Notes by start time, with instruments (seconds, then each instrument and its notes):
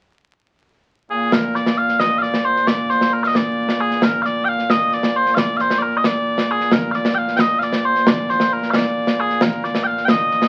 1.10 bagpipes A#2 A#3 G#4
1.32 bagpipes A#4, concert bass drum, snare
1.55 bagpipes D5, snare
1.66 snare
1.78 bagpipes F5
1.89 snare
2.00 bagpipes D#5, concert bass drum, snare
2.18 bagpipes D5 F5
2.23 snare
2.34 snare
2.45 bagpipes C5
2.56 snare
2.67 bagpipes D5, concert bass drum, snare
2.90 bagpipes C5, snare
3.01 snare
3.13 bagpipes A#4
3.24 bagpipes D#5 F5, snare
3.35 bagpipes D5, concert bass drum, snare
3.69 snare
3.81 bagpipes G#4
3.91 snare
4.02 bagpipes A#4, concert bass drum, snare
4.22 bagpipes D5 F5, snare
4.45 bagpipes F5 G5
4.59 snare
4.70 bagpipes D#5, concert bass drum, snare
4.92 bagpipes D5, snare
5.03 snare
5.16 bagpipes C5
5.26 snare
5.35 bagpipes D5 F5, concert bass drum, snare
5.57 bagpipes F5, snare
5.61 bagpipes C5
5.70 snare
5.79 bagpipes A#4 D5
5.97 bagpipes D#5
6.04 bagpipes D5, concert bass drum, snare
6.38 snare
6.51 bagpipes G#4
6.60 snare
6.71 bagpipes A#4, concert bass drum, snare
6.92 bagpipes D5 F5, snare
7.05 snare
7.15 bagpipes F5 G5
7.28 snare
7.37 bagpipes D#5 G5, concert bass drum, snare
7.59 bagpipes F5, snare
7.63 bagpipes D5
7.72 snare
7.85 bagpipes C5
7.95 snare
8.07 bagpipes D5, concert bass drum, snare
8.29 bagpipes C5, snare
8.40 snare
8.53 bagpipes A#4
8.63 snare
8.71 bagpipes F5, concert bass drum, snare
8.75 bagpipes D5
9.07 snare
9.20 bagpipes G#4
9.30 snare
9.41 bagpipes A#4, concert bass drum, snare
9.64 bagpipes D5, snare
9.75 snare
9.84 bagpipes F5 G5
9.97 snare
10.05 bagpipes G5, concert bass drum, snare
10.09 bagpipes D#5
10.31 snare
10.42 snare